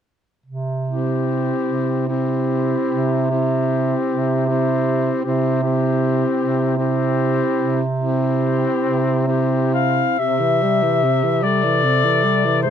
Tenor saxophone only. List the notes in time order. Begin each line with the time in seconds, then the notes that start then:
0.88 C4
2.09 C4
3.31 C4
4.49 C4
5.25 C4
5.64 C4
6.79 C4
7.98 C4
9.28 C4
10.20 C3
10.40 E3
10.63 G3
10.83 E3
11.04 C3
11.24 E3
11.43 G3
11.64 E3
11.84 C3
12.05 E3
12.24 G3
12.45 E3
12.66 G#2